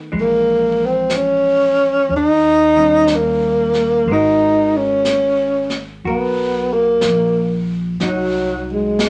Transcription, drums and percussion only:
0.11 brush sweep
1.10 brush sweep, snare, hi-hat pedal
2.09 brush sweep
3.07 brush sweep, snare, hi-hat pedal
3.73 snare
4.06 brush sweep
5.05 brush sweep, snare, hi-hat pedal
5.70 snare
6.03 brush sweep
7.01 brush sweep, snare, hi-hat pedal
8.00 brush sweep, snare
8.99 brush sweep, snare, hi-hat pedal

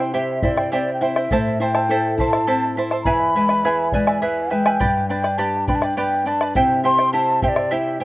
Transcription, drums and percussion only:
0.42 bombo low
0.57 bombo rim
1.16 bombo rim
1.31 bombo low
1.75 bombo rim
2.19 bombo low
2.33 bombo rim
2.91 bombo rim
3.05 bombo rim, bombo low
3.20 bombo rim
3.49 bombo rim
3.63 bombo rim
3.92 bombo low
4.07 bombo rim
4.22 bombo rim
4.51 bombo rim
4.66 bombo rim
4.80 bombo low
5.24 bombo rim
5.68 bombo low
5.82 bombo rim
6.41 bombo rim
6.55 bombo low
6.99 bombo rim
7.42 bombo low
7.56 bombo rim

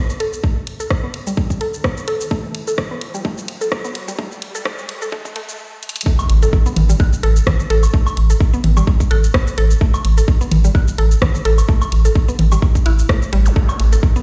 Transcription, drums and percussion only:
0.10 shaker
0.20 closed hi-hat
0.33 shaker
0.44 kick
0.67 closed hi-hat
0.80 shaker
0.90 kick, cross-stick
1.14 closed hi-hat
1.27 shaker
1.37 kick
1.50 kick, shaker
1.61 closed hi-hat
1.74 shaker
1.84 kick, cross-stick
1.97 shaker
2.08 closed hi-hat
2.21 shaker
2.31 kick
2.55 closed hi-hat
2.67 shaker
2.78 kick, cross-stick
3.01 closed hi-hat
3.14 shaker
3.25 kick
3.38 shaker
3.48 closed hi-hat
3.61 shaker
3.72 kick, cross-stick
3.85 shaker
3.95 closed hi-hat
4.08 shaker
4.19 kick
4.32 shaker
4.42 closed hi-hat
4.55 shaker
4.65 kick, cross-stick
4.78 shaker
4.89 closed hi-hat
5.02 shaker
5.12 kick
5.25 kick, shaker
5.36 closed hi-hat
5.49 shaker
5.83 closed hi-hat
5.89 closed hi-hat
5.96 closed hi-hat
6.01 closed hi-hat
6.06 kick
6.19 low woodblock, shaker
6.30 closed hi-hat
6.43 closed hi-hat, shaker
6.53 kick
6.66 shaker
6.76 closed hi-hat, mid tom
6.89 shaker
7.00 kick, high woodblock
7.13 shaker
7.23 closed hi-hat
7.36 shaker
7.47 kick, cross-stick, mid tom
7.60 shaker
7.70 closed hi-hat
7.83 low woodblock, shaker
7.94 kick
8.07 low woodblock, shaker
8.17 closed hi-hat
8.30 closed hi-hat, shaker
8.40 kick
8.54 shaker
8.64 closed hi-hat, mid tom
8.77 low woodblock, shaker
8.87 kick
9.00 kick, shaker
9.11 closed hi-hat, high woodblock
9.24 shaker
9.34 kick, cross-stick
9.47 shaker
9.58 closed hi-hat
9.71 shaker
9.81 kick
9.94 low woodblock, shaker
10.05 closed hi-hat
10.18 closed hi-hat, shaker
10.28 kick
10.41 shaker
10.51 closed hi-hat, mid tom
10.64 shaker
10.75 kick, high woodblock
10.88 shaker
10.98 closed hi-hat
11.11 shaker
11.22 kick, cross-stick, mid tom
11.35 shaker
11.45 closed hi-hat
11.58 low woodblock, shaker
11.69 kick
11.82 low woodblock, shaker
11.92 closed hi-hat
12.05 closed hi-hat, shaker
12.15 kick
12.28 shaker
12.39 closed hi-hat, mid tom
12.52 low woodblock, shaker
12.62 kick
12.75 kick, shaker
12.86 closed hi-hat, high woodblock
12.99 shaker
13.09 kick, cross-stick
13.22 shaker
13.33 closed hi-hat
13.46 closed hi-hat, shaker
13.56 kick
13.69 low woodblock, shaker
13.80 closed hi-hat
13.92 closed hi-hat, shaker
14.03 kick
14.16 shaker

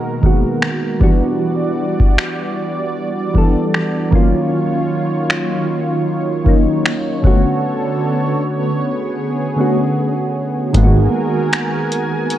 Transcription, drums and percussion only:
0.23 kick
0.62 finger snap
1.01 kick
2.00 kick
2.18 finger snap
3.35 kick
3.74 finger snap
4.12 kick
5.30 finger snap
6.46 kick
6.86 finger snap
7.24 kick
10.74 kick, closed hi-hat
11.53 finger snap, closed hi-hat
11.92 closed hi-hat
12.30 closed hi-hat

